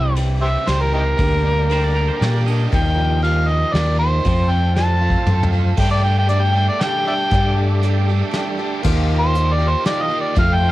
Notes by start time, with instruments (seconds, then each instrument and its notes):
Already playing: fingered electric bass C2, steel-string acoustic guitar C3 G3 C4 E4 G4, overdriven electric guitar E3, tonewheel organ G3 C4 E4 G4, upright piano E4 G4 C5, harmonica G5
0.16 overdriven electric guitar E3, steel-string acoustic guitar G3 C4 E4 G4, upright piano E4 G4 C5, ride
0.42 overdriven electric guitar C4, harmonica G4 C5 E5
0.66 fingered electric bass C#2, steel-string acoustic guitar G3 C4 E4 G4, upright piano E4 G4 D5, harmonica C5, snare, ride
0.81 harmonica A#4
0.92 steel-string acoustic guitar C4 E4 G4, harmonica D#4 G4 A#4
1.18 fingered electric bass D2, steel-string acoustic guitar D3 G3 A#3 D4 G4, tonewheel organ G3 A#3 D4 G4, upright piano D4 G4 A#4, kick, ride
1.44 overdriven electric guitar A#3
1.69 overdriven electric guitar D3, steel-string acoustic guitar G3 A#3 D4, upright piano D4 G4 A#4, pedal steel guitar C5, ride
1.73 steel-string acoustic guitar G4
1.84 pedal steel guitar D5
1.95 steel-string acoustic guitar A#3 D4 G4, pedal steel guitar A#4
2.08 pedal steel guitar C5
2.20 fingered electric bass A#2, steel-string acoustic guitar G3, upright piano D4 G4 A4, overdriven electric guitar G4, pedal steel guitar D5, snare, ride
2.24 steel-string acoustic guitar A#3 D4 G4
2.46 steel-string acoustic guitar A#3 D4 G4, pedal steel guitar D#5, ride
2.69 fingered electric bass D#2, steel-string acoustic guitar D#3 F3 A#3, tonewheel organ G3 A#3 D#4 F4, upright piano F4 G4 D#5, harmonica G5, kick, ride
2.74 steel-string acoustic guitar D#4 G4
2.96 overdriven electric guitar F3
3.22 steel-string acoustic guitar F3 A#3 D#4 G4, upright piano F4 G4 D#5, harmonica F5, ride
3.48 steel-string acoustic guitar A#3 D#4 G4, harmonica D#5
3.73 fingered electric bass D#2, steel-string acoustic guitar F3 A#3, upright piano F4 G4 F5, overdriven electric guitar A#4, harmonica D5, snare, ride
3.78 steel-string acoustic guitar D#4 G4
3.99 overdriven electric guitar D#4, harmonica C5
4.25 fingered electric bass F2, steel-string acoustic guitar F3 C4 F4 A4, tonewheel organ F3 A3 C4 F4, upright piano F4 A4 C5, kick, ride
4.49 overdriven electric guitar C4, harmonica G5
4.75 steel-string acoustic guitar F3 C4 F4, upright piano F4 A4 D5, harmonica A5, snare
4.80 steel-string acoustic guitar A4
5.01 overdriven electric guitar F4
5.10 kick
5.26 fingered electric bass F#2, steel-string acoustic guitar F3 C4, upright piano F4 A4 C5, overdriven electric guitar A4, mid tom
5.31 steel-string acoustic guitar F4 A4
5.43 floor tom
5.53 steel-string acoustic guitar C4 F4 A4
5.77 steel-string acoustic guitar G2 D3 G3 D4 G4 A4, fingered electric bass G2, tonewheel organ G3 A3 D4 G4, overdriven electric guitar A3, upright piano D4 G4 A4 D5, harmonica G5, kick, crash
5.91 harmonica D5
6.02 overdriven electric guitar A3 D4 G4, harmonica G5
6.18 harmonica G5
6.29 steel-string acoustic guitar G3 D4 G4, overdriven electric guitar A3, upright piano D4 G4 A4 D5, harmonica D5, closed hi-hat
6.33 steel-string acoustic guitar A4
6.42 harmonica G5
6.55 steel-string acoustic guitar G3 D4 G4 A4, overdriven electric guitar A3, harmonica G5
6.69 harmonica D5
6.80 steel-string acoustic guitar G3 D4 G4, overdriven electric guitar A3, upright piano D4 G4 A4 F5, harmonica G5, snare, closed hi-hat
6.85 steel-string acoustic guitar A4
7.05 overdriven electric guitar A3 G4, steel-string acoustic guitar D4 A4, harmonica D5 E5 G5
7.10 steel-string acoustic guitar G3
7.31 fingered electric bass G2, steel-string acoustic guitar G2 D3 G3 D4 G4, overdriven electric guitar A3, kick, closed hi-hat
7.35 steel-string acoustic guitar A4
7.56 overdriven electric guitar A3 D4 G4
7.83 steel-string acoustic guitar G3 D4 G4 A4, overdriven electric guitar A3, upright piano D4 G4 A4 D5, closed hi-hat
8.09 steel-string acoustic guitar G3 D4 G4 A4, overdriven electric guitar A3
8.31 steel-string acoustic guitar G3 D4 G4 A4, overdriven electric guitar A3, upright piano D4, snare, closed hi-hat
8.36 upright piano G4 A4 D5
8.58 steel-string acoustic guitar G3 D4 G4 A4, overdriven electric guitar A3
8.82 fingered electric bass D#2, steel-string acoustic guitar D#3 F3 A#3 F4 G4, tonewheel organ A#3 D#4 F4 G4, overdriven electric guitar D#4, upright piano F4 G4, kick, crash
8.86 upright piano A#4 D#5
9.08 overdriven electric guitar A#3 D#4 G4
9.20 harmonica C5
9.34 overdriven electric guitar D#3 D#4, steel-string acoustic guitar F3 A#3, upright piano F4 G4 A#4 D5, closed hi-hat
9.38 steel-string acoustic guitar F4 G4
9.53 harmonica D5
9.59 overdriven electric guitar D#3 D#4, steel-string acoustic guitar A#3 F4 G4
9.70 harmonica C5
9.84 overdriven electric guitar D#3 D#4, steel-string acoustic guitar F3 A#3 F4, upright piano G4, harmonica D5, snare, closed hi-hat
9.88 upright piano F4 A#4, steel-string acoustic guitar G4
10.03 harmonica D#5
10.09 overdriven electric guitar D#3 D#4, steel-string acoustic guitar F4 G4
10.14 steel-string acoustic guitar A#3
10.21 harmonica D5
10.34 overdriven electric guitar F2 C3, fingered electric bass F2, steel-string acoustic guitar F3 A3 C4 F4, tonewheel organ A3 C4 F4 A4, kick, closed hi-hat
10.38 upright piano F4 A4 C5 F5, steel-string acoustic guitar A4, harmonica F5
10.54 harmonica G5
10.60 overdriven electric guitar F3 A3 C4 F4